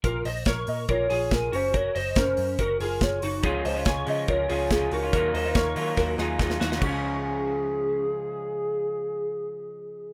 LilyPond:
<<
  \new Staff \with { instrumentName = "Soft synth lead" } { \time 4/4 \key des \major \tempo 4 = 142 r4. ees''8 des''4 bes'8 c''8 | des''8 c''4. bes'4 des''8. r16 | r4. ees''8 des''4 aes'8 bes'8~ | bes'2. r4 |
aes'1~ | aes'1 | }
  \new Staff \with { instrumentName = "Clean electric guitar" } { \time 4/4 \key des \major <f' bes'>8 <c'' ees''>8 <bes' des''>4 <f' bes'>8 <f' aes'>4 <des' ges'>8 | <ges' bes'>8 <c'' ees''>8 <des' bes'>4 <ges' bes'>8 <f' aes'>4 <ees' ges'>8 | <f' aes'>8 <c'' ees''>8 <aes' des''>4 <f' bes'>8 <f' aes'>4 <ees' ges'>8 | <ges' bes'>8 <c'' ees''>8 <bes' des''>4 <ges' bes'>8 <f' aes'>4 <ees' ges'>8 |
des'2. r4 | r1 | }
  \new Staff \with { instrumentName = "Clean electric guitar" } { \time 4/4 \key des \major r1 | r1 | <des f aes des' f'>8. <aes des' f'>8. <f aes des' f'>4 <f aes des' f'>8 <f aes des' f'>8. <aes des' f'>16 | <ees ges bes ees' f'>8. <bes ees' f'>8. <ges bes ees' f'>4 <ges bes ees' f'>8 <ges bes ees' f'>8. <bes ees' f'>16 |
<des f aes f' aes'>1~ | <des f aes f' aes'>1 | }
  \new Staff \with { instrumentName = "Picked electric bass" } { \clef bass \time 4/4 \key des \major bes,,8 bes,,8 bes,,8 bes,8 bes,,8 bes,,8 bes,,8 ges,,8~ | ges,,8 ges,,8 ges,,8 ges,8 ges,,8 ges,,8 ges,,8 ges,,8 | des,8 des,8 des,8 des8 des,8 des,8 des,8 des,8 | ees,8 ees,8 ees,8 ees8 ees,8 ees,8 ees,8 ees,8 |
des,1~ | des,1 | }
  \new DrumStaff \with { instrumentName = "Drums" } \drummode { \time 4/4 <hh bd>8 hho8 <hh bd sn>8 hho8 <hh bd>8 hho8 <hh bd sn>8 hho8 | <hh bd>8 hho8 <hh bd sn>8 hho8 <hh bd>8 hho8 <hh bd sn>8 hho8 | <hh bd>8 hho8 <hh bd sn>8 hho8 <hh bd>8 hho8 <hh bd sn>8 hho8 | <hh bd>8 hho8 <hh bd sn>8 hho8 <bd sn>8 sn8 <bd sn>16 sn16 sn16 sn16 |
<cymc bd>4 r4 r4 r4 | r4 r4 r4 r4 | }
>>